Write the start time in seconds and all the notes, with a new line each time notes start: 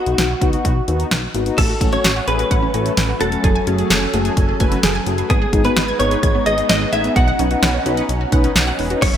Already playing: F#4
0.06 B1 B3 D#4 F#4, closed hi-hat
0.18 B1, snare, closed hi-hat
0.41 C#2 B3 D#4 F#4, kick, closed hi-hat
0.53 B3 D#4 F#4, closed hi-hat
0.65 B1, kick, closed hi-hat
0.88 D#2 B3 D#4 F#4, closed hi-hat
1.00 closed hi-hat
1.11 B1, snare, closed hi-hat
1.35 G#1 B3 D#4 F#4, closed hi-hat
1.46 B3 D#4 F#4, closed hi-hat
1.58 A1 F#3 A3 C#4 A4, kick, closed hi-hat, crash
1.70 F#4
1.81 A1 A3 C#4 F#4, kick, closed hi-hat
1.93 A3 C#4 F#4 C#5, closed hi-hat
2.04 A1 F#4, snare, closed hi-hat
2.16 F#5
2.28 A1 A3 C#4 G#4 B4, closed hi-hat
2.39 F#4, closed hi-hat
2.51 A1 F#5, kick, closed hi-hat
2.63 C#4
2.74 A1 A3 C#4 F#4 A4, closed hi-hat
2.86 closed hi-hat
2.97 A1 C#4, snare, closed hi-hat
3.09 F#4
3.21 E1 A3 C#4 F#4 A4 F#5, closed hi-hat
3.32 A3 C#4 F#4, closed hi-hat
3.44 F#1 C#4 G#4 A4 G#5, kick, closed hi-hat
3.55 G#5
3.67 F#1 A3 C#4 F#4 G#4, closed hi-hat
3.79 A3 F#4 G#4, closed hi-hat
3.90 F#1 G#5, snare, closed hi-hat
4.02 C#4
4.14 F#1 A3 F#4 G#4, closed hi-hat
4.25 G#5, closed hi-hat
4.37 F#1, kick, closed hi-hat
4.49 G#4
4.60 F#1 A3 F#4 B4 G#5, kick, closed hi-hat
4.72 C#4, closed hi-hat
4.83 F#1 G#4, snare, closed hi-hat
4.95 G#5
5.07 F#1 A3 F#4 G#4, closed hi-hat
5.18 A3 F#4 G#4 B4, closed hi-hat
5.30 G#1 G#3 B3 D#4 G#4, kick, closed hi-hat
5.42 G#4
5.53 G#1 B3 D#4 G#4, kick, closed hi-hat
5.65 B3 D#4 F#4 B4, closed hi-hat
5.76 G#1 G#4, snare, closed hi-hat
5.88 G#6
5.99 G#1 B3 D#4 B4 C#5, closed hi-hat
6.11 G#4, closed hi-hat
6.23 G#1 G#6, kick, closed hi-hat
6.35 B3
6.46 G#1 B3 D#4 G#4 D#5, closed hi-hat
6.58 closed hi-hat
6.69 G#1 B3 D#5, snare, closed hi-hat
6.81 G#4
6.93 A1 B3 D#4 G#4 E5 G#6, closed hi-hat
7.04 B3 D#4 G#4, closed hi-hat
7.16 B1 C#4 F#4 F#5, kick, closed hi-hat
7.28 F#5
7.39 B1 C#4 D#4 B4, closed hi-hat
7.51 C#4 D#4 F#4 B4, closed hi-hat
7.63 B1 F#5, snare, closed hi-hat
7.74 C#4
7.86 B1 C#4 D#4 F#4 B4, closed hi-hat
7.97 F#5, closed hi-hat
8.09 B1, closed hi-hat
8.21 F#4
8.32 B1 C#4 D#4 B4 F#5, kick, closed hi-hat
8.44 C#4, closed hi-hat
8.56 B1 F#4, snare, closed hi-hat
8.67 F#5
8.79 E1 C#4 D#4 B4, open hi-hat
8.90 C#4 D#4 F#4 B4, closed hi-hat
9.02 F#1 F#3 C#4 E4 A4 C#5, kick, closed hi-hat, crash, impact
9.14 E5